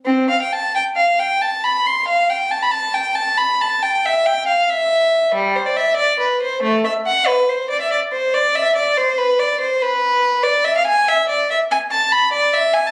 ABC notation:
X:1
M:12/8
L:1/16
Q:3/8=93
K:C
V:1 name="Violin"
C2 f g a2 g2 f2 g2 a2 b2 c'2 f2 g2 a b | a2 g2 a2 b2 a2 g2 e2 g2 f2 e6 | G,2 c d e2 d2 B2 c2 A,2 e2 ^f2 B2 c2 d e | d2 c2 d2 e2 d2 c2 B2 d2 c2 B6 |
[K:Ephr] d2 e f ^g2 e2 d2 e2 g2 a2 b2 d2 e2 g a |]